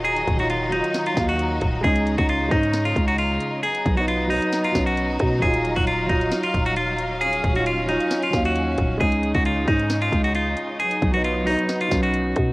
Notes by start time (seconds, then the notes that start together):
Already playing: D#1 D#3 F#3 D#4 F4
0.04 G#4, closed hi-hat
0.16 closed hi-hat
0.27 D#1, kick, closed hi-hat
0.36 F#3 D#4 F#4, closed hi-hat
0.42 F4
0.50 F4, closed hi-hat
0.69 F#3 D#4, closed hi-hat
0.75 F4
0.84 closed hi-hat
0.94 snare, closed hi-hat
1.06 F4, closed hi-hat
1.14 D#2 F#3 D#4, kick, snare, closed hi-hat
1.20 F5
1.29 F#4, closed hi-hat
1.39 closed hi-hat
1.61 D#1, kick, closed hi-hat
1.81 C#2 C#3 G#3 C#4 G#4, kick, closed hi-hat
1.87 D#4
1.96 closed hi-hat
2.07 closed hi-hat
2.18 C#2 F#4, kick, closed hi-hat
2.29 F4, closed hi-hat
2.48 G#2 G#3 C#4 D#4, kick, closed hi-hat
2.54 D#4
2.63 closed hi-hat
2.73 snare, closed hi-hat
2.85 F4, closed hi-hat
2.96 C#2, kick, closed hi-hat
3.08 F#4, closed hi-hat
3.18 F4, closed hi-hat
3.40 closed hi-hat
3.63 F#3 B3 D#4 G#4, closed hi-hat
3.75 closed hi-hat
3.86 B1, kick, closed hi-hat
3.95 F#3 B3 F#4, closed hi-hat
4.00 D#4
4.08 F4, closed hi-hat
4.27 F#3 B3 D#4, open hi-hat
4.33 D#4
4.42 closed hi-hat
4.53 snare, closed hi-hat
4.64 F4, closed hi-hat
4.72 B1 F#3 B3, kick, snare, closed hi-hat
4.78 C#4
4.86 F#4, closed hi-hat
4.97 closed hi-hat
5.20 B2, kick, closed hi-hat
5.39 D#1 F#3 D#4 G#4 F5, kick, closed hi-hat
5.45 F4
5.54 closed hi-hat
5.65 closed hi-hat
5.76 D#1 F#4, kick, closed hi-hat
5.87 F4, closed hi-hat
6.07 D#1 F#3 D#4, kick, closed hi-hat
6.12 F4
6.21 closed hi-hat
6.32 snare, closed hi-hat
6.43 F4, closed hi-hat
6.54 D#1, kick, closed hi-hat
6.66 F#4, closed hi-hat
6.76 F4, closed hi-hat
6.99 closed hi-hat
7.21 C#4 G#4, closed hi-hat
7.33 closed hi-hat
7.44 D#1, kick, closed hi-hat
7.53 F#3 D#4 F#4, closed hi-hat
7.59 F4
7.66 F4, closed hi-hat
7.86 F#3 D#4, closed hi-hat
7.91 F4
8.00 closed hi-hat
8.11 snare, closed hi-hat
8.23 F4, closed hi-hat
8.30 D#2 F#3 D#4, kick, snare, closed hi-hat
8.36 F5
8.45 F#4, closed hi-hat
8.56 closed hi-hat
8.78 D#1, kick, closed hi-hat
8.98 C#2 C#3 G#3 C#4 D#4 G#4, kick, closed hi-hat
9.03 D#4
9.12 closed hi-hat
9.23 closed hi-hat
9.35 C#2 F#4, kick, closed hi-hat
9.45 F4, closed hi-hat
9.65 G#2 G#3 C#4 D#4, kick, closed hi-hat
9.70 D#4
9.80 closed hi-hat
9.90 snare, closed hi-hat
10.02 F4, closed hi-hat
10.12 C#2, kick, closed hi-hat
10.24 F#4, closed hi-hat
10.35 F4, closed hi-hat
10.57 closed hi-hat
10.80 F#3 B3 G#4, closed hi-hat
10.91 closed hi-hat
11.02 B1, kick, closed hi-hat
11.11 F#3 B3 F#4, closed hi-hat
11.17 D#4
11.24 F4, closed hi-hat
11.44 F#3 B3 D#4, open hi-hat
11.50 D#4
11.59 closed hi-hat
11.69 snare, closed hi-hat
11.81 F4, closed hi-hat
11.89 B1 F#3 B3, kick, snare, closed hi-hat
11.94 C#4
12.03 F#4, closed hi-hat
12.14 closed hi-hat
12.36 B2, kick, closed hi-hat